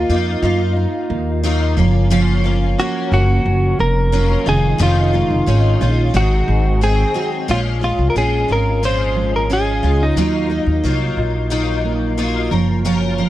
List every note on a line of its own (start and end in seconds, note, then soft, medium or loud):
0.00 1.09 A#3 medium
0.00 0.12 F4 medium
0.00 1.41 F4 medium
0.09 0.37 F2 loud
0.09 0.43 A#3 medium
0.09 0.42 D#4 medium
0.09 0.41 F4 medium
0.42 0.84 F#2 loud
0.42 1.44 A#3 medium
0.42 1.43 D#4 medium
0.42 1.45 F4 medium
0.76 1.42 D#4 medium
1.10 1.79 D#2 medium
1.10 2.44 A#3 medium
1.43 1.77 F#3 medium
1.43 1.78 A#3 medium
1.43 1.77 D#4 medium
1.43 1.75 F4 medium
1.77 2.74 F#1 loud
1.77 2.10 F3 medium
1.77 2.09 A#3 medium
1.77 2.10 C#4 medium
1.77 2.10 F4 medium
2.10 4.46 F3 medium
2.10 2.44 F#3 medium
2.10 2.45 A#3 loud
2.10 2.44 C#4 loud
2.10 2.43 F4 loud
2.44 2.78 A#3 soft
2.44 2.79 C#4 medium
2.44 2.78 F4 medium
2.79 3.12 F#3 medium
2.79 3.12 A#3 medium
2.79 3.11 C#4 medium
2.79 3.12 F#4 loud
3.12 3.39 F#1 loud
3.12 4.12 A#3 soft
3.12 4.13 C#4 soft
3.12 3.80 F#4 loud
3.46 3.73 F#1 loud
3.46 4.12 C#4 medium
3.79 4.34 F1 medium
3.79 4.53 A#3 medium
3.79 4.48 A#4 loud
4.12 4.46 F#3 medium
4.12 4.47 A#3 medium
4.12 4.46 C#4 medium
4.12 4.45 F4 medium
4.46 4.74 F1 loud
4.46 4.80 D#3 medium
4.46 4.78 G#3 soft
4.46 4.78 C#4 medium
4.46 4.78 D#4 medium
4.46 4.79 F4 medium
4.46 4.82 G#4 loud
4.78 5.21 F1 loud
4.78 5.13 F2 medium
4.78 5.13 D#3 medium
4.78 5.13 G#3 medium
4.78 5.13 C#4 medium
4.78 5.12 D#4 loud
4.78 5.11 F4 medium
4.83 6.16 F4 medium
5.13 5.45 G#3 soft
5.13 5.46 C#4 soft
5.13 5.47 D#4 soft
5.13 5.47 F4 soft
5.30 5.44 F1 medium
5.46 5.75 G#1 medium
5.46 5.80 G#3 medium
5.46 5.81 C#4 medium
5.46 5.80 D#4 medium
5.46 5.80 F4 medium
5.81 6.08 A#1 loud
5.81 6.13 G#3 soft
5.81 6.14 C#4 medium
5.81 6.14 D#4 medium
5.81 6.14 F4 medium
6.14 6.42 G#1 loud
6.14 6.81 G#2 medium
6.14 6.81 D#3 medium
6.14 6.80 F#3 medium
6.14 6.81 G#3 medium
6.14 6.81 C4 medium
6.14 6.83 F#4 medium
6.14 6.83 G#4 medium
6.48 7.03 G#1 loud
6.48 7.49 G#3 medium
6.81 7.15 F#3 medium
6.81 7.14 G#3 medium
6.81 7.14 C4 medium
6.81 7.13 G#4 medium
6.81 7.29 G#4 medium
7.14 7.48 F#3 medium
7.14 7.47 G#3 medium
7.14 7.49 C4 medium
7.14 7.55 F#4 medium
7.14 7.48 G#4 medium
7.48 7.90 A#1 loud
7.48 7.82 A#2 medium
7.48 7.82 F3 medium
7.48 7.82 G#3 medium
7.48 7.82 C#4 medium
7.48 7.80 F4 medium
7.48 7.60 F4 medium
7.81 8.15 G#3 soft
7.81 8.15 C#4 soft
7.81 8.15 F4 soft
7.81 8.10 F4 medium
7.99 8.12 C2 medium
8.10 8.16 A#4 medium
8.15 8.43 A#1 medium
8.15 8.49 F3 medium
8.15 8.49 G#3 medium
8.15 8.48 C#4 medium
8.15 8.47 F4 medium
8.15 8.51 G#4 loud
8.48 9.79 G#1 medium
8.48 8.82 G#3 soft
8.48 8.82 C#4 soft
8.48 8.82 F4 soft
8.52 8.85 A#4 loud
8.83 9.50 A#2 medium
8.83 9.49 F3 medium
8.83 9.49 G#3 medium
8.83 9.50 C#4 medium
8.83 9.51 F4 medium
8.83 9.36 C5 loud
9.16 9.82 G#3 medium
9.36 9.52 A#4 medium
9.50 9.83 F3 medium
9.50 9.84 G#3 medium
9.50 9.83 C#4 medium
9.50 9.82 F4 medium
9.50 10.03 G#4 loud
9.83 10.11 C#2 medium
9.83 10.17 G#3 soft
9.83 10.17 C#4 soft
9.83 10.17 F4 soft
10.03 10.98 D#4 medium
10.16 10.58 D#2 medium
10.16 10.51 D#3 medium
10.16 10.51 F#3 medium
10.16 10.51 A#3 medium
10.16 10.50 D#4 medium
10.16 10.49 F4 medium
10.50 10.83 A#3 soft
10.50 10.84 D#4 soft
10.50 10.84 F4 soft
10.66 10.81 D#2 medium
10.83 11.11 C2 medium
10.83 11.50 F#3 medium
10.83 11.51 A#3 medium
10.83 11.50 D#4 medium
10.83 11.51 F4 medium
11.17 12.48 A#1 medium
11.17 13.29 F4 medium
11.50 12.18 D#3 medium
11.50 12.17 F#3 medium
11.50 12.17 A#3 medium
11.50 12.17 D#4 medium
11.50 12.18 F4 medium
11.85 13.29 A#3 medium
12.17 12.51 F#3 medium
12.17 12.52 A#3 medium
12.17 12.52 D#4 medium
12.17 12.51 F4 medium
12.51 13.20 F#1 loud
12.51 12.84 F3 medium
12.51 12.84 C#4 soft
12.51 12.84 F4 medium
12.51 12.85 A#4 medium
12.85 13.18 F3 medium
12.85 13.19 F#3 medium
12.85 13.19 C#4 loud
12.85 13.18 F4 loud
12.85 13.17 A#4 loud
13.18 13.29 F3 medium
13.18 13.29 C#4 soft
13.18 13.29 F4 medium
13.18 13.29 A#4 medium